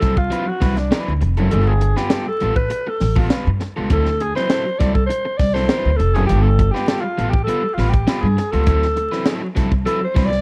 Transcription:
Already playing: alto saxophone A4
0.01 upright bass C2, overdriven electric guitar F#3 C4 E4 A4, kick, snare, closed hi-hat
0.17 alto saxophone F4, muted overdriven electric guitar stroke, kick
0.31 overdriven electric guitar F#3 C4 E4 B4, closed hi-hat
0.47 alto saxophone F#4, muted overdriven electric guitar stroke
0.60 upright bass C2, overdriven electric guitar F#3 C4 E4 B4, kick, snare, open hi-hat
0.77 alto saxophone D4, muted overdriven electric guitar stroke, snare, closed hi-hat
0.91 overdriven electric guitar F#3 C4 E4 B4, snare, closed hi-hat
1.08 upright bass D2
1.21 upright bass F1, muted overdriven electric guitar stroke, closed hi-hat
1.37 upright bass F#1, overdriven electric guitar F#3 C4 E4 A4, closed hi-hat
1.50 upright bass G1, overdriven electric guitar G3 B3 F4 A4, alto saxophone A4, closed hi-hat
1.67 alto saxophone G#4
1.81 muted overdriven electric guitar stroke, closed hi-hat
1.97 overdriven electric guitar G3 B3 F4 B4, alto saxophone G4, snare
2.10 overdriven electric guitar G3 B3 F4 A4, snare, closed hi-hat
2.27 alto saxophone A4, muted overdriven electric guitar stroke
2.40 upright bass A1, overdriven electric guitar G3 B3 F4 A4, closed hi-hat
2.56 alto saxophone B4, muted overdriven electric guitar stroke, kick
2.70 muted overdriven electric guitar stroke, closed hi-hat
2.87 alto saxophone A4, muted overdriven electric guitar stroke
3.00 upright bass A1, snare, open hi-hat
3.16 overdriven electric guitar G3 B3 F4 A4, alto saxophone F4, kick
3.30 overdriven electric guitar G3 B3 F4 B4, snare, closed hi-hat
3.47 upright bass G2
3.60 muted overdriven electric guitar stroke, snare, closed hi-hat
3.76 upright bass C#2, overdriven electric guitar G3 B3 F4 A4
3.90 upright bass D2, overdriven electric guitar F#3 C4 E4 A4, alto saxophone A4, kick, closed hi-hat
4.06 snare
4.20 alto saxophone G#4, muted overdriven electric guitar stroke, closed hi-hat
4.35 overdriven electric guitar F#3 C4 E4 B4, alto saxophone C5, snare
4.50 overdriven electric guitar F#3 C4 E4 A4, snare, closed hi-hat
4.65 muted overdriven electric guitar stroke
4.79 upright bass C2, overdriven electric guitar F#3 C4 E4 A4, alto saxophone D5, kick, snare, closed hi-hat
4.94 alto saxophone A4, muted overdriven electric guitar stroke, kick
5.06 alto saxophone C5, muted overdriven electric guitar stroke
5.10 closed hi-hat
5.25 muted overdriven electric guitar stroke
5.38 upright bass C2, alto saxophone D5, kick, snare, open hi-hat
5.54 overdriven electric guitar F#3 C4 E4 A4, alto saxophone C5, snare
5.69 overdriven electric guitar F#3 C4 E4 B4, snare, closed hi-hat
5.85 upright bass D2
5.96 upright bass F1, alto saxophone A4, muted overdriven electric guitar stroke, closed hi-hat
6.14 upright bass F#1, overdriven electric guitar F#3 C4 E4 A4, alto saxophone G#4, closed hi-hat
6.26 upright bass G1, overdriven electric guitar G3 B3, alto saxophone G4, closed hi-hat
6.30 overdriven electric guitar F4 A4
6.42 alto saxophone A4
6.59 muted overdriven electric guitar stroke, kick, closed hi-hat
6.71 overdriven electric guitar F4 B4, alto saxophone G4
6.75 overdriven electric guitar G3 B3, snare
6.88 overdriven electric guitar G3 B3 F4 A4, snare, closed hi-hat
7.01 alto saxophone F4, muted overdriven electric guitar stroke
7.18 upright bass A1, overdriven electric guitar G3 B3 F4 A4, closed hi-hat
7.30 alto saxophone G4, muted overdriven electric guitar stroke, kick
7.44 overdriven electric guitar G3, alto saxophone A4
7.48 overdriven electric guitar B3 F4 B4, closed hi-hat
7.64 muted overdriven electric guitar stroke
7.74 upright bass A1, alto saxophone F4
7.78 overdriven electric guitar G3 B3 F4 B4, snare, open hi-hat
7.90 alto saxophone G4, muted overdriven electric guitar stroke, kick
7.94 closed hi-hat
8.07 overdriven electric guitar G3 B3 F4 B4, snare, closed hi-hat
8.21 upright bass G2, alto saxophone G#4
8.37 muted overdriven electric guitar stroke, snare, closed hi-hat
8.51 upright bass C#2, overdriven electric guitar G3 B3 F4 A4, alto saxophone A4, closed hi-hat
8.67 upright bass D2, overdriven electric guitar F#3 C4 E4 A4, kick, closed hi-hat
8.82 snare
8.97 muted overdriven electric guitar stroke, closed hi-hat
9.12 overdriven electric guitar F#3 C4 E4 B4, snare
9.26 overdriven electric guitar F#3 C4 E4 A4, snare, closed hi-hat
9.43 muted overdriven electric guitar stroke
9.55 upright bass C2, overdriven electric guitar F#3 C4 E4 A4, kick, snare, closed hi-hat
9.72 muted overdriven electric guitar stroke, kick
9.85 overdriven electric guitar F#3 C4 E4 B4, alto saxophone A4, closed hi-hat
10.01 alto saxophone C5, muted overdriven electric guitar stroke
10.15 upright bass C2, overdriven electric guitar F#3 C4 E4 B4, kick, snare, open hi-hat
10.26 alto saxophone D5
10.31 muted overdriven electric guitar stroke, snare

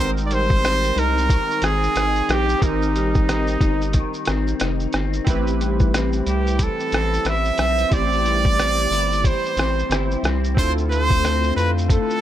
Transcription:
Already playing: analog synth bass G#1, clean electric guitar G#2 G3, synth keys C4 D#4 G5
0.00 synth keys A#4, trumpet C5
0.17 shaker
0.26 clean electric guitar G3, trumpet D5
0.31 trumpet C5, closed hi-hat, shaker
0.50 kick, shaker
0.62 clean electric guitar C4, cross-stick, closed hi-hat, shaker
0.84 shaker
0.96 analog synth bass C2, clean electric guitar D#4, trumpet A#4, closed hi-hat, shaker
1.18 shaker
1.29 clean electric guitar D#3, kick, closed hi-hat, shaker
1.51 shaker
1.62 analog synth bass G#1, clean electric guitar C4, trumpet G#4, cross-stick, closed hi-hat, shaker
1.83 shaker
1.96 analog synth bass G#1, clean electric guitar D#4, cross-stick, closed hi-hat, shaker
2.16 shaker
2.28 analog synth bass A#1, clean electric guitar C4, trumpet G4, cross-stick, closed hi-hat, shaker
2.49 shaker
2.59 analog synth bass G#1, synth keys C4 D#4 G4, kick, closed hi-hat, shaker
2.63 trumpet D#4, synth keys A#4
2.82 shaker
2.96 clean electric guitar G3, closed hi-hat, shaker
3.15 kick, shaker
3.28 clean electric guitar C4, cross-stick, closed hi-hat, shaker
3.47 shaker
3.61 analog synth bass G1, clean electric guitar D#4, kick, closed hi-hat, shaker
3.81 shaker
3.93 clean electric guitar D#3, kick, closed hi-hat, shaker
4.14 shaker
4.25 analog synth bass G#1, clean electric guitar C4, cross-stick, closed hi-hat, shaker
4.47 shaker
4.60 analog synth bass F1, clean electric guitar D#4, cross-stick, closed hi-hat, shaker
4.80 shaker
4.93 analog synth bass G1, clean electric guitar C4, cross-stick, closed hi-hat, shaker
5.13 shaker
5.24 analog synth bass A1, clean electric guitar A2, synth keys C4 E4 G4, kick, closed hi-hat, shaker
5.30 synth keys B4
5.47 shaker
5.61 clean electric guitar G3, closed hi-hat, shaker
5.80 kick, shaker
5.94 clean electric guitar C4, cross-stick, closed hi-hat, shaker
6.13 shaker
6.27 analog synth bass C2, clean electric guitar E4, trumpet G4, closed hi-hat, shaker
6.47 shaker
6.59 clean electric guitar E3, trumpet A4, kick, closed hi-hat, shaker
6.80 shaker
6.92 analog synth bass A1, clean electric guitar C4, cross-stick, closed hi-hat, shaker
7.13 shaker
7.25 analog synth bass A1, clean electric guitar E4, trumpet E5, cross-stick, closed hi-hat, shaker
7.45 shaker
7.58 analog synth bass B1, clean electric guitar C4, cross-stick, closed hi-hat, shaker
7.78 shaker
7.89 analog synth bass A1, clean electric guitar A2, synth keys C4 E4 G4, kick, closed hi-hat, shaker
7.93 synth keys C5, trumpet D5
8.12 shaker
8.25 clean electric guitar G3, closed hi-hat, shaker
8.45 kick, shaker
8.59 clean electric guitar C4, cross-stick, closed hi-hat, shaker
8.78 shaker
8.91 analog synth bass G1, clean electric guitar E4, closed hi-hat, shaker
9.12 shaker
9.24 clean electric guitar E3, trumpet C5, kick, closed hi-hat, shaker
9.45 shaker
9.57 analog synth bass A1, clean electric guitar C4, cross-stick, closed hi-hat, shaker
9.79 shaker
9.89 analog synth bass G1, synth keys C4 E4 G4 C5, clean electric guitar E4, cross-stick, closed hi-hat, shaker
10.11 shaker
10.23 analog synth bass C2, clean electric guitar C4, cross-stick, closed hi-hat, shaker
10.44 shaker
10.54 analog synth bass D2, clean electric guitar D3, synth keys C4 E4 F4, kick, closed hi-hat, shaker
10.58 synth keys A4, trumpet C5
10.78 shaker
10.90 clean electric guitar A3, trumpet C5, closed hi-hat, shaker
11.10 kick, shaker
11.23 clean electric guitar C4, cross-stick, closed hi-hat, shaker
11.43 shaker
11.56 analog synth bass F2, clean electric guitar F4, trumpet B4, closed hi-hat, shaker
11.78 shaker
11.89 clean electric guitar A3, trumpet A4, kick, closed hi-hat, shaker
12.10 shaker

